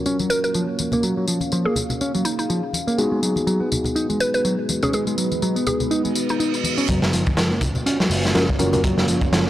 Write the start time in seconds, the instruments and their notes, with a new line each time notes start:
Already playing: ambient pad F#3 A#3 C#4 C#5 F5, tine electric piano C#4 F4 F#4 A#4
0.06 picked electric bass C#4, tambourine
0.19 picked electric bass F#3, tambourine, high conga
0.30 synth pluck A#4, tambourine
0.44 synth pluck A#4, tambourine
0.54 picked electric bass F3, tambourine
0.79 tambourine, high conga
0.92 picked electric bass A#3, tambourine, low conga
1.03 picked electric bass F#3, ambient pad G#4, tambourine
1.17 picked electric bass F#3
1.28 picked electric bass F3, tambourine
1.41 tambourine, high conga
1.52 picked electric bass F3, tambourine
1.65 picked electric bass A#3, synth pluck G#4
1.76 tambourine, low conga
1.90 tambourine, low conga
2.01 picked electric bass C#4, tambourine
2.15 picked electric bass F#3, tambourine, high conga
2.25 synth pluck D#4, tambourine
2.39 synth pluck D#4, tambourine
2.50 picked electric bass F3, tambourine
2.73 tambourine, high conga
2.87 picked electric bass A#3, tambourine
2.98 picked electric bass G#3, ambient pad G#3 B3 D#4 F#4 B4, tine electric piano B3 D#4 F#4 G#4, tambourine
3.12 picked electric bass G#3
3.23 picked electric bass F#3, tambourine
3.36 tambourine, high conga
3.47 picked electric bass F#3, tambourine
3.60 picked electric bass B3
3.72 tambourine, low conga
3.84 tambourine, low conga
3.96 picked electric bass D#4, tambourine
4.09 picked electric bass G#3, tambourine, high conga
4.20 synth pluck B4, tambourine
4.34 synth pluck B4, tambourine
4.45 picked electric bass F#3, tambourine
4.69 tambourine, high conga
4.83 picked electric bass C#4, synth pluck G#4, tambourine, low conga
4.93 picked electric bass G#3, synth pluck G#4, tambourine
5.07 picked electric bass G#3, tambourine
5.18 picked electric bass F#3, tambourine
5.32 tambourine, high conga
5.42 picked electric bass F#3, tambourine
5.56 picked electric bass B3, tambourine
5.67 synth pluck G#4, tambourine, low conga
5.80 tambourine, low conga
5.91 picked electric bass D#4, tambourine, reverse cymbal
6.05 picked electric bass G#3, tambourine, high conga
6.15 tambourine
6.29 synth pluck D#4, tambourine
6.40 picked electric bass D#4, tambourine
6.54 tambourine
6.64 tambourine, high conga
6.78 picked electric bass C#4, tambourine
6.88 picked electric bass F#1 F#3, ambient pad A#3 C#4 F4 F#4 C#5, kick, closed hi-hat, tambourine, riser
7.02 picked electric bass F#3, snare
7.13 picked electric bass F3, closed hi-hat, tambourine
7.26 kick, tambourine, high conga
7.37 picked electric bass F3, snare, closed hi-hat, tambourine
7.51 picked electric bass A#3
7.61 kick, closed hi-hat, tambourine, low conga
7.75 tambourine, low conga
7.86 picked electric bass C#4, closed hi-hat, tambourine
7.99 picked electric bass F#3, snare, high conga
8.10 picked electric bass F#1, open hi-hat, tambourine
8.25 snare, tambourine
8.34 picked electric bass F3, tine electric piano C#4 F4 F#4 A#4, snare, closed hi-hat, tambourine
8.49 kick
8.59 picked electric bass F#1, tine electric piano C#4 F4 F#4 A#4, closed hi-hat, tambourine, high conga
8.73 picked electric bass A#3, tine electric piano C#4 F4 F#4 A#4, closed hi-hat, tambourine, low conga
8.84 picked electric bass F#3, kick, closed hi-hat, tambourine
8.97 picked electric bass F#3, snare
9.08 picked electric bass F3, closed hi-hat, tambourine
9.21 kick, tambourine, high conga
9.32 picked electric bass F#1 F3, snare, closed hi-hat, tambourine
9.46 picked electric bass A#3